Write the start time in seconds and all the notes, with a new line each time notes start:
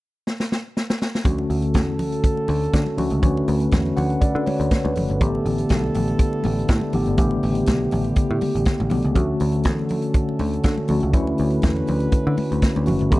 0.27 snare
0.40 snare
0.52 snare
0.77 snare
0.90 snare
1.02 snare
1.15 snare
1.24 D2 D3 A3 C#4 F#4 A4, kick, closed hi-hat, muted conga, low conga
1.38 muted conga
1.50 D2, open hi-hat
1.62 closed hi-hat
1.74 E2, kick, snare, closed hi-hat, muted conga, high conga
1.99 D2, open hi-hat, low conga
2.12 closed hi-hat
2.24 kick, closed hi-hat, muted conga
2.37 muted conga
2.48 D2, open hi-hat, high conga
2.63 closed hi-hat
2.73 D3, kick, snare, closed hi-hat
2.86 muted conga, high conga
2.97 D2 D3 A3 C#4 F#4, open hi-hat, low conga
3.10 C#2, closed hi-hat
3.21 D2 D3 A3 C#4 F#4 B4, kick, closed hi-hat, muted conga, low conga
3.37 muted conga
3.48 D2, open hi-hat
3.60 closed hi-hat
3.71 E2, kick, snare, closed hi-hat, muted conga, high conga
3.86 muted conga
3.96 D2 F#5, open hi-hat, low conga
4.10 closed hi-hat
4.21 D5, muted picked electric bass stroke, kick, closed hi-hat, muted conga
4.35 D3, muted conga
4.46 C#5, open hi-hat, high conga
4.60 D2, closed hi-hat
4.71 B4, kick, snare, closed hi-hat, muted conga
4.85 D2, muted conga, high conga
4.95 F#1 A4, open hi-hat, low conga
5.08 G1, closed hi-hat
5.20 A1 D3 G3 A3 B3 E4 G4 A4, kick, closed hi-hat, low conga
5.35 muted conga
5.45 A1, open hi-hat
5.58 closed hi-hat
5.69 B1, kick, snare, closed hi-hat, high conga
5.84 muted conga
5.94 A1, open hi-hat, low conga
6.08 closed hi-hat
6.19 kick, closed hi-hat
6.33 muted conga
6.44 A1, open hi-hat, high conga
6.59 closed hi-hat
6.68 A2, kick, snare, closed hi-hat, muted conga
6.81 high conga
6.93 A1 D3 A3 B3 G4, open hi-hat, low conga
7.06 G1, closed hi-hat
7.17 A1 C#3 A3 B3 G4, kick, closed hi-hat, muted conga, low conga
7.23 D3
7.31 muted conga
7.43 A1, open hi-hat
7.55 closed hi-hat
7.66 B1, kick, snare, closed hi-hat, muted conga, high conga
7.91 A1, open hi-hat, low conga
8.04 closed hi-hat
8.16 muted picked electric bass stroke, kick, closed hi-hat, muted conga
8.31 A2, muted conga
8.41 open hi-hat, high conga
8.55 A1, closed hi-hat
8.65 kick, snare, closed hi-hat, muted conga
8.80 A1, muted conga, high conga
8.90 B1 D3 A3 B3 G4, open hi-hat, low conga
9.02 C#2, closed hi-hat
9.15 D2 D3 A3 C#4 F#4 A4, kick, closed hi-hat, muted conga, low conga
9.40 D2, open hi-hat
9.52 closed hi-hat
9.63 E2, kick, snare, closed hi-hat, high conga
9.79 muted conga
9.89 D2, open hi-hat, low conga
10.02 closed hi-hat
10.14 kick, closed hi-hat
10.29 muted conga
10.39 D2, open hi-hat, high conga
10.53 closed hi-hat
10.63 D3, kick, snare, closed hi-hat, muted conga
10.77 muted conga, high conga
10.88 D2 D3 A3 C#4 F#4, open hi-hat, low conga
11.00 C#2, closed hi-hat
11.13 D2 D3 A3 C#4 E4 B4, kick, closed hi-hat, low conga
11.27 muted conga
11.38 D2, open hi-hat
11.50 closed hi-hat
11.62 E2, kick, snare, closed hi-hat, muted conga, high conga
11.77 muted conga
11.87 D2, open hi-hat, low conga
12.00 closed hi-hat
12.12 muted picked electric bass stroke, kick, closed hi-hat, muted conga
12.27 D3, muted conga
12.37 open hi-hat, high conga
12.52 D2, closed hi-hat
12.62 kick, snare, closed hi-hat, muted conga
12.76 D2, muted conga, high conga
12.85 F#1 D3 A3 C#4 F#4, open hi-hat, low conga
12.99 G1, closed hi-hat
13.11 A1 D3 G3 A3 B3 E4 G4 A4, kick, closed hi-hat, muted conga, low conga